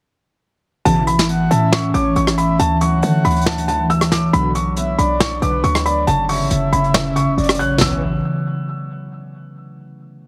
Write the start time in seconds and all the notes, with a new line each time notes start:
0.85 A1 B2 C#3 E3 A5, closed hi-hat
1.07 A3 B5, closed hi-hat
1.19 snare
1.29 B3 F#5, closed hi-hat
1.51 A2 C#4 E5 A5, closed hi-hat
1.72 C#6, cross-stick, snare
1.94 A1 E3 C#5 D6, closed hi-hat
2.16 A1 A3 C#6, closed hi-hat
2.27 cross-stick
2.38 E5 B5, closed hi-hat
2.59 D2 E3 A5, closed hi-hat
2.81 F#3 F#5 C#6, closed hi-hat
2.93 C#2
3.02 D3 A3, closed hi-hat
3.24 D2 D4 B5, closed hi-hat
3.30 closed hi-hat
3.36 closed hi-hat
3.41 closed hi-hat
3.46 A5, cross-stick, snare
3.58 closed hi-hat
3.68 E3 A5, closed hi-hat
3.90 F#3 E6, closed hi-hat
4.01 cross-stick, closed hi-hat
4.12 D6, snare, closed hi-hat
4.33 B1 B2 D3 F#3 B5, closed hi-hat
4.55 F#3 C#6, closed hi-hat
4.76 B3 E5, closed hi-hat
4.98 B1 D4 D5 B5, closed hi-hat
5.20 C#6, snare
5.42 B1 D3 B4 D6, closed hi-hat
5.64 D2 F#3 C#6, closed hi-hat
5.75 cross-stick
5.85 D5 B5, closed hi-hat
6.07 F#1 C#3 A5, closed hi-hat
6.29 F#3 E5 C#6, open hi-hat
6.41 G#1
6.50 F#1 A3, closed hi-hat
6.72 F#1 C#4 B5, closed hi-hat
6.84 closed hi-hat
6.94 snare
7.16 G#1 C#3 C#6, closed hi-hat
7.27 F#1
7.37 F#1 F#3 D5, closed hi-hat
7.43 closed hi-hat
7.49 cross-stick, closed hi-hat
7.54 closed hi-hat
7.59 A1 C#5 F#6, closed hi-hat
7.78 A1 C#2 B2 C#3 E3 C#5 E6, snare, floor tom, crash
7.85 B3